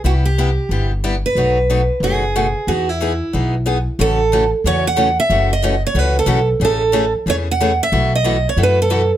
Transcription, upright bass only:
X:1
M:4/4
L:1/8
Q:"Swing" 1/4=183
K:Alyd
V:1 name="Upright bass" clef=bass
=C,,4 =G,,,4 | B,,,4 F,,,4 | E,,4 B,,,4 | A,,,4 E,,4 |
F,,,4 C,,2 B,,,2 | A,,,4 E,,4 | B,,,4 F,,4 |]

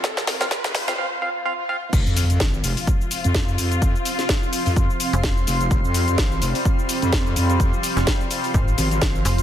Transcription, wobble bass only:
X:1
M:4/4
L:1/16
Q:"Swing 16ths" 1/4=127
K:Cphr
V:1 name="Wobble bass" clef=bass
F,, z4 F,,,3 z8 | F,,, F,,3 A,,,2 F,,, z4 F,,3 F,,2- | F,, z6 F,,2 z4 z F,,,2 | F,,, F,,3 A,,,2 F,,, z4 F,,3 F,,2- |
F,, z8 z A,,,4 z2 |]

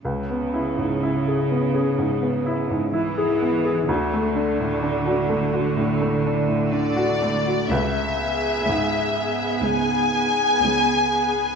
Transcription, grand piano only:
X:1
M:4/4
L:1/16
Q:1/4=62
K:C#m
V:1 name="Grand piano"
C,, B, E G,, E G B, G G,, B, E G,, E G B, G | =D,, A, =D A,, D F A, F A,, A, D A,, D F A, F | C,,4 G,,12 |]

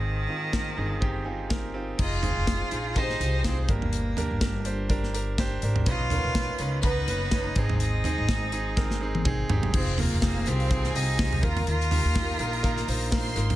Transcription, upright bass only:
X:1
M:4/4
L:1/16
Q:"Swing 16ths" 1/4=124
K:Fdor
V:1 name="Upright bass" clef=bass
A,,,2 z4 G,,,8- G,,,2 | F,,,3 F,,,2 z B,,,4 C,,4 G,,,2- | G,,,2 z G,,,8- G,,,3 A,,,2 | =B,,,3 B,,,2 z ^C,,4 ^F,,,4 A,,,2- |
A,,,2 z A,,,8- A,,,3 G,,,2 | F,,,3 F,,,3 C,,4 C,,4 E,,2 | E,,3 E,,3 B,,,4 B,,,4 A,,,2 |]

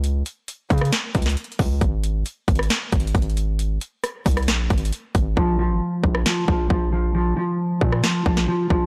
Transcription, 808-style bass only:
X:1
M:4/4
L:1/16
Q:1/4=135
K:Bbm
V:1 name="808-style bass" clef=bass
D,,2 z4 D,2 z2 D,,2 z2 D,,2 | A,,,4 z2 A,,,2 z2 A,,,2 A,,,4- | A,,,2 z4 C,,2 B,,,2 A,,,2 z2 A,,,2 | B,,,3 A,,, z2 B,,,2 z2 B,,,2 B,,,4- |
B,,,2 z4 B,,2 z2 B,,,2 z2 B,,,2 |]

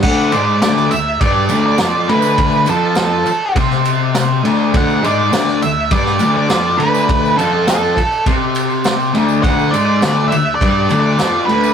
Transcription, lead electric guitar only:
X:1
M:4/4
L:1/16
Q:1/4=102
K:Clyd
V:1 name="Lead electric guitar"
f2 d2 d2 e2 d3 d3 B2- | B2 A2 A4 z8 | f2 d4 e2 d3 d3 B2- | B2 A2 A4 z8 |
f2 d4 e2 d3 d3 B2 |]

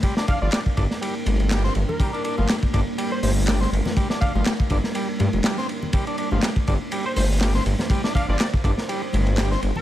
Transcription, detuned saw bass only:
X:1
M:4/4
L:1/16
Q:"Swing 16ths" 1/4=122
K:Gm
V:1 name="Detuned saw bass" clef=bass
z3 G,,, z2 G,,, z3 G,,,3 z G,,, z | z3 G,,, z2 G,,, z3 G,,,3 z G,,, z | z3 G,,, z2 G,,, z3 G,, F,,, z4 | z3 G,,, z2 G,,, z3 G,,,3 z G,,, z |
z3 G,,, z2 G,,, z3 G,,,3 z G,,, z |]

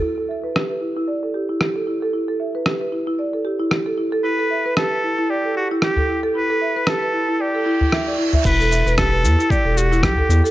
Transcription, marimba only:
X:1
M:4/4
L:1/16
Q:"Swing 16ths" 1/4=114
K:Em
V:1 name="Marimba"
E A e B G B E E d A G E G A E A | E A e B G B E E d A G E G A E A | E A e B G B E E d A G E G A E A | E A e B G B E E d A E E e d E e |
E A e B G B E E d A G E G A E A |]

